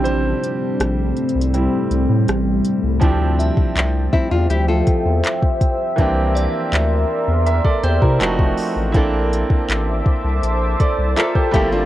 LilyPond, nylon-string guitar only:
\new Staff \with { instrumentName = "Nylon-string guitar" } { \time 4/4 \key d \minor \tempo 4 = 81 r1 | r4. <c' e'>16 <d' f'>16 <e' g'>16 <f' a'>4. r16 | r1 | r2. <f' a'>8 <e' g'>16 <d' f'>16 | }